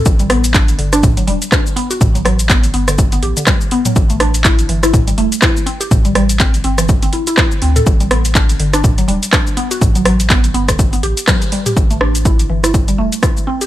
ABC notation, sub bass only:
X:1
M:4/4
L:1/8
Q:"Swing 16ths" 1/4=123
K:Ador
V:1 name="Sub bass" clef=bass
A,,,3 G,,,2 E,,, z2 | A,,,3 G,,,2 A,,, z2 | A,,,3 G,,,2 E,,, z2 | A,,,3 G,,,2 z2 D,, |
A,,,3 G,,,2 E,,, z2 | A,,,3 G,,,2 A,,, z2 | A,,,3 G,,,2 E,,, z2 |]